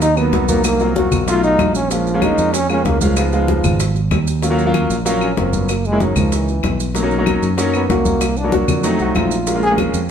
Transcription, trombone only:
0, 0, Header, 1, 2, 480
1, 0, Start_track
1, 0, Tempo, 314961
1, 991, Time_signature, 4, 2, 24, 8
1, 15400, End_track
2, 0, Start_track
2, 0, Title_t, "Trombone"
2, 0, Program_c, 0, 57
2, 27, Note_on_c, 0, 63, 109
2, 273, Note_on_c, 0, 59, 101
2, 296, Note_off_c, 0, 63, 0
2, 755, Note_on_c, 0, 58, 92
2, 778, Note_off_c, 0, 59, 0
2, 980, Note_off_c, 0, 58, 0
2, 989, Note_on_c, 0, 58, 93
2, 1436, Note_off_c, 0, 58, 0
2, 1468, Note_on_c, 0, 66, 94
2, 1916, Note_off_c, 0, 66, 0
2, 1952, Note_on_c, 0, 65, 112
2, 2175, Note_off_c, 0, 65, 0
2, 2189, Note_on_c, 0, 63, 106
2, 2637, Note_off_c, 0, 63, 0
2, 2674, Note_on_c, 0, 61, 94
2, 2913, Note_on_c, 0, 53, 92
2, 2936, Note_off_c, 0, 61, 0
2, 3398, Note_on_c, 0, 63, 98
2, 3420, Note_off_c, 0, 53, 0
2, 3880, Note_on_c, 0, 61, 107
2, 3903, Note_off_c, 0, 63, 0
2, 4112, Note_off_c, 0, 61, 0
2, 4121, Note_on_c, 0, 61, 97
2, 4367, Note_on_c, 0, 58, 88
2, 4390, Note_off_c, 0, 61, 0
2, 4592, Note_off_c, 0, 58, 0
2, 4601, Note_on_c, 0, 53, 81
2, 6216, Note_off_c, 0, 53, 0
2, 7957, Note_on_c, 0, 61, 82
2, 8211, Note_on_c, 0, 60, 80
2, 8234, Note_off_c, 0, 61, 0
2, 8448, Note_on_c, 0, 59, 80
2, 8470, Note_off_c, 0, 60, 0
2, 8695, Note_on_c, 0, 58, 79
2, 8718, Note_off_c, 0, 59, 0
2, 8927, Note_on_c, 0, 56, 95
2, 8950, Note_off_c, 0, 58, 0
2, 9172, Note_on_c, 0, 54, 82
2, 9195, Note_off_c, 0, 56, 0
2, 9404, Note_off_c, 0, 54, 0
2, 9415, Note_on_c, 0, 53, 73
2, 9656, Note_on_c, 0, 52, 79
2, 9679, Note_off_c, 0, 53, 0
2, 10606, Note_off_c, 0, 52, 0
2, 11809, Note_on_c, 0, 59, 87
2, 12049, Note_on_c, 0, 58, 79
2, 12071, Note_off_c, 0, 59, 0
2, 12761, Note_on_c, 0, 62, 90
2, 12784, Note_off_c, 0, 58, 0
2, 12997, Note_off_c, 0, 62, 0
2, 13717, Note_on_c, 0, 66, 97
2, 13960, Note_on_c, 0, 65, 78
2, 13983, Note_off_c, 0, 66, 0
2, 14667, Note_off_c, 0, 65, 0
2, 14676, Note_on_c, 0, 68, 107
2, 14818, Note_off_c, 0, 68, 0
2, 15400, End_track
0, 0, End_of_file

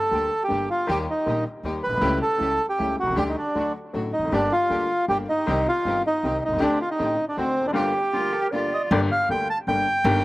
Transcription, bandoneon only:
0, 0, Header, 1, 2, 480
1, 0, Start_track
1, 0, Key_signature, -2, "minor"
1, 0, Tempo, 382166
1, 1112, Time_signature, 3, 2, 24, 8
1, 12866, End_track
2, 0, Start_track
2, 0, Title_t, "Bandoneon"
2, 0, Program_c, 0, 23
2, 0, Note_on_c, 0, 69, 81
2, 542, Note_off_c, 0, 69, 0
2, 551, Note_on_c, 0, 67, 72
2, 867, Note_off_c, 0, 67, 0
2, 886, Note_on_c, 0, 65, 78
2, 1126, Note_off_c, 0, 65, 0
2, 1134, Note_on_c, 0, 67, 77
2, 1237, Note_off_c, 0, 67, 0
2, 1386, Note_on_c, 0, 63, 71
2, 1814, Note_off_c, 0, 63, 0
2, 2302, Note_on_c, 0, 71, 84
2, 2747, Note_off_c, 0, 71, 0
2, 2793, Note_on_c, 0, 69, 87
2, 3344, Note_off_c, 0, 69, 0
2, 3383, Note_on_c, 0, 67, 73
2, 3717, Note_off_c, 0, 67, 0
2, 3765, Note_on_c, 0, 66, 74
2, 3977, Note_off_c, 0, 66, 0
2, 4003, Note_on_c, 0, 67, 77
2, 4066, Note_off_c, 0, 67, 0
2, 4134, Note_on_c, 0, 63, 49
2, 4222, Note_off_c, 0, 63, 0
2, 4242, Note_on_c, 0, 62, 60
2, 4680, Note_off_c, 0, 62, 0
2, 5185, Note_on_c, 0, 63, 68
2, 5436, Note_off_c, 0, 63, 0
2, 5442, Note_on_c, 0, 62, 77
2, 5680, Note_on_c, 0, 65, 84
2, 5684, Note_off_c, 0, 62, 0
2, 6348, Note_off_c, 0, 65, 0
2, 6393, Note_on_c, 0, 67, 86
2, 6501, Note_off_c, 0, 67, 0
2, 6648, Note_on_c, 0, 63, 83
2, 7130, Note_off_c, 0, 63, 0
2, 7139, Note_on_c, 0, 65, 86
2, 7566, Note_off_c, 0, 65, 0
2, 7619, Note_on_c, 0, 63, 79
2, 8082, Note_off_c, 0, 63, 0
2, 8101, Note_on_c, 0, 63, 77
2, 8300, Note_off_c, 0, 63, 0
2, 8324, Note_on_c, 0, 62, 82
2, 8529, Note_off_c, 0, 62, 0
2, 8562, Note_on_c, 0, 65, 80
2, 8657, Note_off_c, 0, 65, 0
2, 8679, Note_on_c, 0, 63, 78
2, 9110, Note_off_c, 0, 63, 0
2, 9153, Note_on_c, 0, 62, 68
2, 9252, Note_off_c, 0, 62, 0
2, 9268, Note_on_c, 0, 60, 81
2, 9629, Note_off_c, 0, 60, 0
2, 9637, Note_on_c, 0, 62, 75
2, 9685, Note_off_c, 0, 62, 0
2, 9727, Note_on_c, 0, 67, 81
2, 10649, Note_off_c, 0, 67, 0
2, 10976, Note_on_c, 0, 75, 60
2, 11080, Note_off_c, 0, 75, 0
2, 11208, Note_on_c, 0, 74, 84
2, 11313, Note_off_c, 0, 74, 0
2, 11450, Note_on_c, 0, 77, 87
2, 11668, Note_off_c, 0, 77, 0
2, 11691, Note_on_c, 0, 79, 91
2, 11908, Note_off_c, 0, 79, 0
2, 11931, Note_on_c, 0, 81, 99
2, 12035, Note_off_c, 0, 81, 0
2, 12159, Note_on_c, 0, 79, 103
2, 12866, Note_off_c, 0, 79, 0
2, 12866, End_track
0, 0, End_of_file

